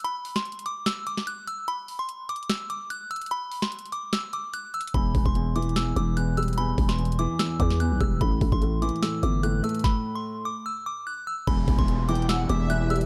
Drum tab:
HH |x-----------o-----------x---x---x---x-----------x-----------x-----------x-----------x-----------|x-----------o-----------x-----------x---x---x---x-----------x-----------x-----------x--x--x--x--|x-----------o-----------x---x---x---x-----------x-----------x-----------x-----------x---x---x---|x-----------o-----------x-----------x---x---x---x-----------x-----------x-----------x--x--x--x--|
SD |------------------o-----------------------------o-----------------o-----------------------------|------------------------------------------------o-----------------------------------------------|------------------o-----------------------------o-----------------------------------------------|------------------------------------------------o-----------------------------------------------|
BD |------------------------------------------------------------------------------------------------|------------------------------------------------------------------------------------------------|------------------------------------------------------------------------------------------------|o-----------o-----o-----------------------------------------------------------------------------|

HH |x-----------o-----------x---x---x---x-----------x-----------x-----------x-----------x-----------|x-----------o-----------x-----------x---x---x---x-----------x-----------x-----------x--x--x--x--|------------------------------------------------------------------------------------------------|x-----------o-----------x-----------x---x---x---x-----------x-----------x-----------x--x--x-----|
SD |------------------o-----------------------------o-----------------o-----------------------------|------------------------------------------------o-----------------------------------------------|o-----------------------------------------------------------------------------------------------|------------------------------------------------o-----------------------------------------------|
BD |------------o-----------------------------------------------o-----------------------o-----------|o-----------o-----o-----------------------------------------------------------------------------|o-----------------------------------------------------------------------------------------------|o-----------o-----o-----------------------------------------------------------------------------|